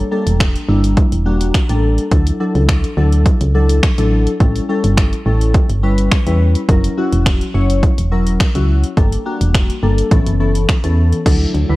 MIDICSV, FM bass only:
0, 0, Header, 1, 2, 480
1, 0, Start_track
1, 0, Key_signature, 2, "major"
1, 0, Tempo, 571429
1, 1777, Time_signature, 4, 2, 24, 8
1, 9878, End_track
2, 0, Start_track
2, 0, Title_t, "FM bass"
2, 0, Program_c, 0, 39
2, 225, Note_on_c, 0, 28, 100
2, 471, Note_off_c, 0, 28, 0
2, 577, Note_on_c, 0, 31, 103
2, 833, Note_off_c, 0, 31, 0
2, 945, Note_on_c, 0, 28, 93
2, 1279, Note_off_c, 0, 28, 0
2, 1424, Note_on_c, 0, 33, 97
2, 1670, Note_off_c, 0, 33, 0
2, 1777, Note_on_c, 0, 38, 111
2, 1944, Note_off_c, 0, 38, 0
2, 2144, Note_on_c, 0, 37, 101
2, 2390, Note_off_c, 0, 37, 0
2, 2497, Note_on_c, 0, 38, 101
2, 2753, Note_off_c, 0, 38, 0
2, 2865, Note_on_c, 0, 37, 97
2, 3199, Note_off_c, 0, 37, 0
2, 3345, Note_on_c, 0, 33, 95
2, 3591, Note_off_c, 0, 33, 0
2, 3697, Note_on_c, 0, 33, 110
2, 3864, Note_off_c, 0, 33, 0
2, 4065, Note_on_c, 0, 31, 101
2, 4311, Note_off_c, 0, 31, 0
2, 4418, Note_on_c, 0, 33, 100
2, 4674, Note_off_c, 0, 33, 0
2, 4785, Note_on_c, 0, 31, 93
2, 5119, Note_off_c, 0, 31, 0
2, 5265, Note_on_c, 0, 40, 95
2, 5511, Note_off_c, 0, 40, 0
2, 5617, Note_on_c, 0, 30, 110
2, 5785, Note_off_c, 0, 30, 0
2, 5985, Note_on_c, 0, 28, 102
2, 6231, Note_off_c, 0, 28, 0
2, 6337, Note_on_c, 0, 30, 101
2, 6593, Note_off_c, 0, 30, 0
2, 6705, Note_on_c, 0, 28, 95
2, 7040, Note_off_c, 0, 28, 0
2, 7184, Note_on_c, 0, 37, 95
2, 7430, Note_off_c, 0, 37, 0
2, 7537, Note_on_c, 0, 31, 105
2, 7704, Note_off_c, 0, 31, 0
2, 7904, Note_on_c, 0, 28, 100
2, 8150, Note_off_c, 0, 28, 0
2, 8257, Note_on_c, 0, 31, 97
2, 8424, Note_off_c, 0, 31, 0
2, 8496, Note_on_c, 0, 33, 109
2, 8585, Note_off_c, 0, 33, 0
2, 8625, Note_on_c, 0, 30, 97
2, 8960, Note_off_c, 0, 30, 0
2, 9104, Note_on_c, 0, 40, 98
2, 9350, Note_off_c, 0, 40, 0
2, 9458, Note_on_c, 0, 38, 111
2, 9625, Note_off_c, 0, 38, 0
2, 9698, Note_on_c, 0, 38, 88
2, 9786, Note_off_c, 0, 38, 0
2, 9824, Note_on_c, 0, 38, 88
2, 9878, Note_off_c, 0, 38, 0
2, 9878, End_track
0, 0, End_of_file